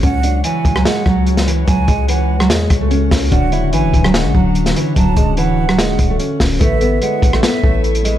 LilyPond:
<<
  \new Staff \with { instrumentName = "Flute" } { \time 4/4 \key d \lydian \tempo 4 = 146 fis''4 gis''4 fis''4 r4 | gis''4 fis''4 r2 | fis''4 gis''4 fis''4 r4 | a''4 fis''2 r4 |
e''4 fis''4 e''4 r4 | }
  \new Staff \with { instrumentName = "Harp" } { \time 4/4 \key d \lydian r1 | r1 | <d cis' fis' cis''>1~ | <d cis' fis' cis''>1 |
<b e' b' cis''>1 | }
  \new Staff \with { instrumentName = "Ambient pad" } { \time 4/4 \key d \lydian << { <fis' cis''>1~ | <fis' cis''>1~ | <fis' cis''>1~ | <fis' cis''>1 |
<b' cis''>1 | } \\ { <cis gis>1~ | <cis gis>1 | <d cis'>1~ | <d cis'>1 |
<b e'>1 | } >> }
  \new Staff \with { instrumentName = "Nylon-string guitar" } { \clef bass \time 4/4 \key d \lydian cis'8 d'8 e8. fis16 gis8 fis4 e8 | fis8 gis8 e8. fis16 gis8. a16 cis'4 | d'8 e'8 e8. fis16 gis8 fis4 e8 | fis8 gis8 e8. fis16 gis8. a16 cis'4 |
a8 b8 gis8. a16 b8 a4 gis8 | }
  \new Staff \with { instrumentName = "808-style bass" } { \clef bass \time 4/4 \key d \lydian cis,4 r8 cis,8 r8 cis,4. | cis,8 cis,4. e,8 cis,4 cis,8 | d,,4 a,,16 d,,16 d,,8. a,,16 d,,4 r8 | d,,8 d,,4 cis,,8 d,,8 d,,8 r8 d,,8 |
a,,4 r8 a,,8 r8 a,,4. | }
  \new DrumStaff \with { instrumentName = "Drums" } \drummode { \time 4/4 <hh bd>8 hh8 hh8 <hh bd>16 ss16 <hh sn>8 <bd ss>8 hh16 <hh sn>16 hh8 | <hh bd>8 <hh bd>8 hh8. ss16 <hh sn>8 <hh bd ss>8 hh8 <hho bd sn>8 | <hh bd>8 hh8 hh8 <hh bd>16 ss16 <hh sn>8 bd8 hh16 <hh sn>16 hh8 | <hh bd>8 <hh bd>8 hh8. ss16 <hh sn>8 <hh bd>8 hh8 <hho bd sn>8 |
<hh bd>8 hh8 hh8 <hh bd>16 ss16 <hh sn>8 bd8 hh16 hh16 hh8 | }
>>